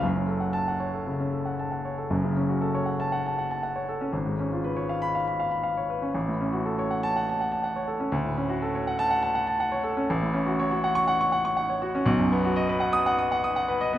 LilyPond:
\new Staff \with { instrumentName = "Grand piano" } { \time 4/4 \key fis \minor \tempo 4 = 121 << { r4 a''8 r2 r8 | r4. r16 a''8 r4. r16 | r4. r16 b''8 r4. r16 | r4. r16 a''8 r4. r16 |
r4. r16 a''8 r4. r16 | \key fis \dorian r4. r16 cis'''8 r4. r16 | r4. r16 dis'''8 r4. r16 | } \\ { <fis,, fis,>16 cis'16 a'16 fis''8 fis''16 cis''16 a'16 cis16 cis'16 a'16 fis''16 a''16 fis''16 cis''16 a'16 | <fis,, fis,>16 cis16 cis'16 fis'16 a'16 cis''16 fis''8 fis''16 a''16 fis''16 a''16 fis''16 cis''16 a'16 cis'16 | gis,,16 gis,16 cis'16 eis'16 b'16 cis''16 eis''8 eis''16 b''16 eis''16 b''16 eis''16 cis''16 b'16 cis'16 | a,,16 a,16 cis'16 fis'16 a'16 cis''16 fis''8 fis''16 a''16 fis''16 a''16 fis''16 cis''16 a'16 cis'16 |
d,16 a,16 cis'16 fis'16 a'16 cis''16 fis''8 fis''16 a''16 fis''16 a''16 fis''16 cis''16 a'16 cis'16 | a,,16 a,16 cis'16 fis'16 cis''16 fis'16 fis''8 fis''16 cis'''16 fis''16 cis'''16 fis''16 cis''16 fis'16 cis'16 | b,,16 fis,16 b16 fis'16 dis''16 b'16 fis''8 fis''16 dis'''16 fis''16 dis'''16 fis''16 b'16 dis''16 b16 | } >> }